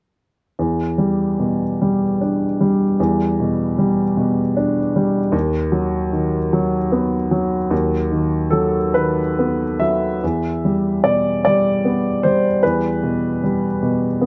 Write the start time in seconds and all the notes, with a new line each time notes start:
0.59 E2
0.98 G3
1.40 B2
1.82 G3
2.21 D4
2.61 G3
3.00 E2
3.40 B2
3.78 G3
4.17 B2
4.57 D4
4.96 G3
5.32 D#2
5.72 F#3
6.12 D#3
6.53 F#3
6.92 B3
7.31 F#3
7.71 D#2
8.11 D#3
8.50 F#3 A4
8.94 D#3 B4
9.39 B3
9.80 F#3 E5
10.24 E2
10.65 G3
11.04 B2 D5
11.45 G3 D5
11.85 B3
12.23 G3 C5
12.63 E2 B4
13.03 B2
13.43 G3
13.83 B2
14.21 B3